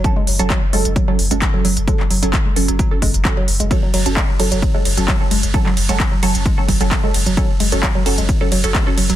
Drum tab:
RD |----------------|----------------|x-x---x-x-x-x-x-|x-x-x-x-x-x-x-x-|
HH |x-oxx-oxx-oxx-ox|x-oxx-oxx-oxx-ox|x-oxx-oxx-oxx-ox|x-oxx-oxx-oxx-ox|
CP |----x-------x---|-x--x-------x---|----x-------x---|-x--x-------x---|
BD |o---o---o---o---|o---o---o-o-o---|o---o---o---o---|o---o---o-o-o---|

RD |x-x-x-x-x-x-x-x-|
HH |x-oxx-oxx-oxx-ox|
CP |----x-------x---|
BD |o---o---o---o---|